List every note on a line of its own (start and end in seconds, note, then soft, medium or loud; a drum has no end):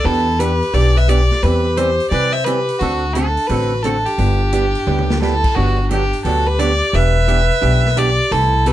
0.04 0.60 E2 medium
0.04 0.27 E3 medium
0.04 0.27 B3 medium
0.04 0.27 D4 medium
0.04 0.41 E4 medium
0.04 0.27 G4 medium
0.04 0.41 A4 medium
0.39 0.51 E3 medium
0.39 0.51 B3 medium
0.39 0.51 D4 medium
0.39 0.74 G4 medium
0.39 0.52 G4 medium
0.39 0.76 B4 medium
0.39 closed hi-hat medium
0.62 open hi-hat soft
0.74 1.29 B1 medium
0.74 0.96 E3 medium
0.74 0.96 B3 medium
0.74 0.96 D4 medium
0.74 0.98 G4 medium
0.74 0.96 G4 medium
0.74 0.99 D5 loud
0.74 open hi-hat soft
0.96 1.10 B4 medium
0.96 1.11 E5 loud
1.08 1.20 E3 medium
1.08 1.20 B3 medium
1.08 1.20 D4 medium
1.08 1.43 G4 medium
1.08 1.20 G4 medium
1.08 1.45 D5 loud
1.08 closed hi-hat medium
1.31 snare soft
1.43 1.98 E2 medium
1.43 1.65 E3 soft
1.43 1.66 G3 medium
1.43 1.66 C4 medium
1.43 1.66 E4 medium
1.43 1.78 G4 medium
1.43 1.79 B4 loud
1.43 1.66 B4 medium
1.43 open hi-hat soft
1.77 1.89 E3 medium
1.77 1.89 G3 medium
1.77 1.89 C4 medium
1.77 1.89 E4 medium
1.77 2.12 G4 medium
1.77 1.89 B4 medium
1.77 2.10 C5 medium
1.77 closed hi-hat soft
2.00 open hi-hat soft
2.10 2.67 C3 medium
2.10 2.34 E3 medium
2.10 2.34 G3 medium
2.10 2.34 C4 medium
2.10 2.34 E4 medium
2.10 2.34 B4 medium
2.10 2.35 B4 medium
2.10 2.34 D5 loud
2.10 open hi-hat soft
2.33 2.48 C5 medium
2.33 2.46 E5 loud
2.44 2.58 E3 medium
2.44 2.58 G3 medium
2.44 2.58 C4 medium
2.44 2.58 E4 medium
2.44 2.82 G4 medium
2.44 2.81 B4 medium
2.44 2.58 B4 medium
2.44 closed hi-hat medium
2.69 open hi-hat soft
2.79 3.36 D2 medium
2.79 3.03 D3 medium
2.79 3.03 A3 medium
2.79 3.03 C4 medium
2.79 3.14 D4 medium
2.79 3.15 F#4 medium
2.79 3.03 F#4 medium
2.79 3.04 A4 medium
2.79 open hi-hat soft
3.13 3.27 D3 medium
3.13 3.27 A3 medium
3.13 3.27 C4 medium
3.13 3.51 D4 medium
3.13 3.27 F#4 medium
3.13 3.49 A4 medium
3.13 3.28 A4 medium
3.13 closed hi-hat medium
3.37 open hi-hat soft
3.47 4.04 A1 medium
3.47 3.72 D3 medium
3.47 3.72 A3 medium
3.47 3.72 C4 medium
3.47 3.85 F#4 medium
3.47 3.72 F#4 medium
3.47 3.72 A4 medium
3.47 3.84 B4 medium
3.47 open hi-hat soft
3.83 3.96 D3 medium
3.83 3.96 A3 medium
3.83 3.96 C4 medium
3.83 4.06 D4 medium
3.83 3.96 F#4 medium
3.83 4.07 A4 medium
3.83 3.96 A4 medium
3.83 closed hi-hat medium
4.06 5.21 D4 medium
4.06 5.21 G4 medium
4.06 open hi-hat soft
4.18 4.73 G1 medium
4.18 4.41 G3 medium
4.18 4.41 B3 medium
4.18 4.41 E4 medium
4.18 4.41 G4 medium
4.18 open hi-hat soft
4.52 4.64 G3 medium
4.52 4.65 B3 medium
4.52 4.65 E4 medium
4.52 4.65 G4 medium
4.52 closed hi-hat medium
4.75 open hi-hat soft
4.87 5.42 D2 medium
4.87 5.09 G3 medium
4.87 5.09 B3 medium
4.87 5.10 E4 medium
4.87 5.10 G4 medium
4.87 mid tom soft
4.99 mid tom medium
5.10 snare medium
5.22 5.33 G3 medium
5.22 5.34 B3 medium
5.22 5.34 E4 medium
5.22 5.58 E4 medium
5.22 5.34 G4 medium
5.22 5.57 A4 medium
5.22 snare medium
5.44 kick medium
5.44 crash medium
5.55 6.11 G1 medium
5.55 5.78 D3 medium
5.55 5.78 F#3 medium
5.55 5.78 B3 medium
5.55 5.91 D4 medium
5.55 5.79 D4 medium
5.55 5.90 F#4 medium
5.55 5.79 G4 medium
5.91 6.02 D3 medium
5.91 6.02 F#3 medium
5.91 6.03 B3 medium
5.91 6.03 D4 medium
5.91 6.23 D4 medium
5.91 6.23 G4 medium
5.91 6.03 G4 medium
5.91 closed hi-hat soft
6.13 open hi-hat soft
6.24 6.80 D2 medium
6.24 6.47 D3 medium
6.24 6.47 F#3 medium
6.24 6.47 B3 medium
6.24 6.48 D4 medium
6.24 6.51 F#4 medium
6.24 6.48 G4 medium
6.24 6.49 A4 medium
6.24 open hi-hat soft
6.47 6.61 G4 medium
6.47 6.61 B4 medium
6.59 6.71 D3 medium
6.59 6.71 F#3 medium
6.59 6.71 B3 medium
6.59 6.71 D4 medium
6.59 6.71 G4 medium
6.59 6.98 G4 medium
6.59 6.96 D5 loud
6.59 closed hi-hat medium
6.93 7.49 E1 medium
6.93 7.16 E3 medium
6.93 7.16 B3 medium
6.93 7.16 D4 medium
6.93 7.16 G4 medium
6.93 8.00 B4 medium
6.93 8.00 E5 loud
6.93 open hi-hat soft
7.28 7.40 E3 medium
7.28 7.40 B3 medium
7.28 7.40 D4 medium
7.28 7.40 G4 medium
7.28 closed hi-hat soft
7.51 open hi-hat soft
7.61 8.18 B1 medium
7.61 7.84 E3 medium
7.61 7.84 B3 medium
7.61 7.84 D4 medium
7.61 7.85 G4 medium
7.61 open hi-hat soft
7.85 snare soft
7.96 8.09 E3 medium
7.96 8.09 B3 medium
7.96 8.09 D4 medium
7.96 8.09 G4 medium
7.96 8.34 G4 medium
7.96 8.33 D5 loud
7.96 closed hi-hat medium
8.31 8.73 C2 medium
8.31 8.54 C3 medium
8.31 8.54 E3 medium
8.31 8.54 A3 medium
8.31 8.54 E4 medium
8.31 8.68 E4 medium
8.31 8.69 A4 loud
8.31 8.54 A4 medium
8.31 open hi-hat soft
8.66 8.73 C3 medium
8.66 8.73 E3 medium
8.66 8.73 A3 medium
8.66 8.73 E4 medium
8.66 8.73 G4 medium
8.66 8.73 A4 medium
8.66 8.73 B4 loud
8.66 closed hi-hat medium